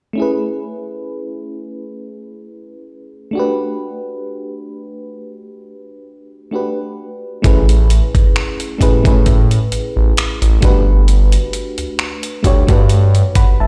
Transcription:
0.13 A3 C#4
0.18 E4 G#4
0.22 B4
3.31 A3 D4
3.35 F#4 G4
3.40 B4
6.51 A3 D4 F#4 G4
6.56 B4
7.42 A1 A3 C#4 E4 G#4, kick, closed hi-hat
7.46 B4
7.69 closed hi-hat
7.90 closed hi-hat
8.15 A1, kick, closed hi-hat
8.36 finger snap
8.60 closed hi-hat
8.78 A1 A3 C#4 E4 G#4, kick, closed hi-hat
8.83 B4
9.03 A2 A3 C#4 E4 G#4, kick, closed hi-hat
9.07 B4
9.26 kick, closed hi-hat
9.51 closed hi-hat
9.72 A1, closed hi-hat
9.96 A1
10.17 finger snap, closed hi-hat
10.42 A1, closed hi-hat
10.61 G1 A3 D4 F#4 G4, kick, closed hi-hat
10.65 B4
11.08 closed hi-hat
11.32 closed hi-hat
11.53 closed hi-hat
11.78 D2, closed hi-hat
11.99 finger snap
12.23 closed hi-hat
12.43 D2 A3 D4 F#4 G4, kick, closed hi-hat
12.47 C#5
12.67 G2 A3 D4 F#4 G4, kick, closed hi-hat
12.71 B4
12.89 closed hi-hat
13.15 closed hi-hat
13.35 G1 F#5 B5, kick, closed hi-hat
13.60 G1 E5 A5

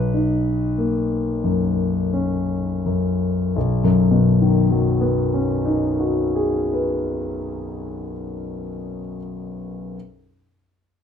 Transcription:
Already playing: B1 B4
0.14 D#4
0.78 A#3
1.44 F#2
2.13 C#4
2.86 F#2
3.56 B1
3.84 F#2
4.11 B2
4.41 D#3
4.71 F#3
5.01 B3
5.34 C#4
5.65 D#4
6.00 F#4
6.35 G#4
6.73 B4

